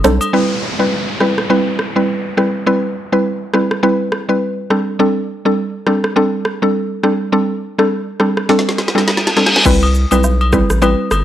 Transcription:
0.04 B1 G3 C4 D4 A4 C5, cross-stick, shaker
0.21 high agogo, shaker
0.33 G3 C4 E4 B4, downlifter
0.79 G3 C4 E4 B4
1.20 G3 C4 E4 B4, cross-stick
1.38 cross-stick
1.50 G3 C4 E4 B4
1.79 cross-stick
1.96 G3 C4 E4 B4
2.37 G3 C4 E4 B4, cross-stick
2.66 G3 C4 E4 B4
3.12 G3 C4 E4 B4
3.54 G3 C4 E4 B4, cross-stick
3.71 cross-stick
3.83 G3 C4 E4 B4
4.12 cross-stick
4.29 G3 C4 E4 B4
4.70 G3 C4 D4 A4, cross-stick
4.99 G3 C4 D4 A4
5.45 G3 C4 D4 A4
5.87 G3 C4 D4 A4, cross-stick
6.04 cross-stick
6.16 G3 C4 D4 A4
6.45 cross-stick
6.62 G3 C4 D4 A4
7.03 G3 C4 D4 A4, cross-stick
7.32 G3 C4 D4 A4
7.78 G3 C4 D4 A4, cross-stick
8.20 G3 C4 D4 A4, cross-stick
8.37 cross-stick
8.49 G3 C4 D4 A4, snare, reverse cymbal
8.59 snare
8.69 snare
8.78 snare
8.88 snare
8.95 G3 C4 D4 A4, snare
9.08 snare
9.17 snare
9.27 snare
9.36 G3 C4 D4 A4, snare
9.46 snare
9.56 snare
9.65 C2 G3 C4 E4 B4, kick, crash, shaker
9.83 high agogo
9.95 shaker
10.11 B1 G3 C4 E4 B4, high agogo, shaker
10.24 low woodblock, shaker
10.41 high agogo
10.53 G3 C4 E4 B4, kick, cross-stick, shaker
10.70 A1, cross-stick, shaker
10.82 G3 C4 E4 B4, high agogo, shaker
11.11 G1, cross-stick, high agogo, shaker

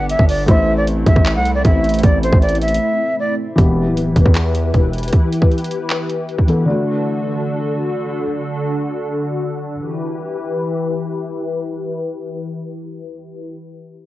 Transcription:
Already playing: G1 G3 B3 D4 G4 B4
0.10 E5, closed hi-hat
0.19 G1, kick
0.29 D5, open hi-hat
0.46 A1 A3 C4 E4 E5, kick, closed hi-hat
0.51 C5
0.77 D5
0.88 closed hi-hat
1.06 A1 E5, kick, closed hi-hat
1.16 A1, kick
1.26 clap, closed hi-hat
1.35 C2 F#5
1.45 closed hi-hat
1.55 D5
1.65 A1 E5, kick, closed hi-hat
1.84 closed hi-hat
1.89 closed hi-hat
1.94 closed hi-hat
1.98 closed hi-hat
2.03 A1 D5, kick, closed hi-hat
2.23 C5, closed hi-hat
2.32 A1, kick
2.42 D5, closed hi-hat
2.48 closed hi-hat
2.55 closed hi-hat
2.61 E5, closed hi-hat
2.68 closed hi-hat
2.74 closed hi-hat
3.19 D5
3.56 E1 E3 B3 E4 G4 B4, kick, closed hi-hat
3.60 G4
3.87 D1
3.97 closed hi-hat
4.16 E1, kick, closed hi-hat
4.26 E2, kick
4.36 clap, closed hi-hat
4.55 closed hi-hat
4.74 E1, kick, closed hi-hat
4.94 closed hi-hat
4.98 closed hi-hat
5.03 closed hi-hat
5.08 closed hi-hat
5.13 kick, closed hi-hat
5.33 closed hi-hat
5.42 kick
5.52 closed hi-hat
5.58 closed hi-hat
5.65 closed hi-hat
5.71 closed hi-hat
5.90 clap, closed hi-hat
6.10 closed hi-hat
6.29 closed hi-hat
6.39 kick
6.47 E3 B3 A4, closed hi-hat
6.66 D3 A3 D4 F#4 A4
6.70 F#4
9.77 E3 E4 G4 B4

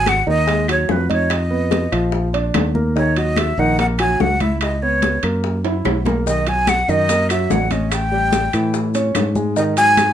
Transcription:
Already playing: G#1 F#3 F#4 G#5
0.06 F#5, high bongo, high conga, high timbale, claves
0.26 D#2 D#3 D#4 D#5, high bongo, high conga
0.47 G#3 G#4, high bongo, high conga, high timbale
0.68 F#3 F#4 C#5, high bongo, high conga, high timbale, claves
0.89 F2 B4, high bongo, low bongo, high conga
1.09 D#4 C#5 D#5, high bongo, high conga, high timbale
1.30 D#5, high bongo, high conga, high timbale, claves
1.51 B3 B4, high conga
1.71 high bongo, high conga, high timbale
1.92 A#1 F3 F4, high bongo, high conga, high timbale, claves
2.12 high bongo, high conga
2.33 D4 D5, high bongo, high conga, high timbale
2.54 D#2, high bongo, low bongo, high conga, high timbale, low timbale, claves
2.75 A#3 A#4, high bongo, high conga
2.95 D#3 D#4 C#5, high bongo, high conga
3.16 F#3 F#4 D#5, high conga, high timbale
3.36 E5, high bongo, high conga, high timbale, claves
3.58 A#1 D#3 D#4 F#5, high bongo, high conga
3.78 A#3 A#4 F#5, high bongo, high conga, high timbale
3.99 F#3 F#4 G#5, high bongo, high conga, high timbale, claves
4.20 C#2 F#5, high bongo, low bongo, high conga
4.40 E4 E5, high bongo, high conga, high timbale
4.61 D#5, high bongo, high conga, high timbale, claves
4.82 B3 B4 C#5, high conga
5.02 high bongo, high conga, high timbale
5.23 F#2 A#3 A#4, high bongo, high conga, high timbale, claves
5.44 high bongo, high conga
5.65 E4 E5, high bongo, high conga, high timbale
5.85 B1, high bongo, high conga, high timbale, claves
6.05 A#3 A#4, low bongo, high conga, low timbale
6.26 D#3 D#4 D#5, high bongo, high conga, maracas
6.47 F#3 F#4 G#5, high conga, high timbale
6.67 F#5, high bongo, high conga, high timbale, claves, maracas
6.88 F#2 D#3 D#4 D#5, high bongo, high conga, maracas
7.09 A#3 A#4, high bongo, high conga, high timbale, maracas
7.29 F#3 F#4 E5, high bongo, high conga, high timbale, claves, maracas
7.50 A1 F#5, high bongo, low bongo, high conga, low timbale, maracas
7.70 C#4 C#5 D#5, high bongo, high conga, high timbale, maracas
7.91 G5, high bongo, high conga, high timbale, claves, maracas
8.12 G3 G4, high conga
8.33 high bongo, high conga, high timbale, maracas
8.53 A2 E3 E4, high bongo, high conga, high timbale, claves, maracas
8.74 high bongo, high conga, maracas
8.94 C#4 C#5, high bongo, high conga, high timbale, maracas
9.15 G#2, high bongo, low bongo, high conga, high timbale, claves, maracas
9.35 G#3 G#4, high bongo, high conga, maracas
9.56 D#3 D#4 D#5, high bongo, high conga, maracas
9.77 F#3 F#4 G#5, high conga, high timbale, maracas
9.97 high bongo, high conga, high timbale, claves, maracas

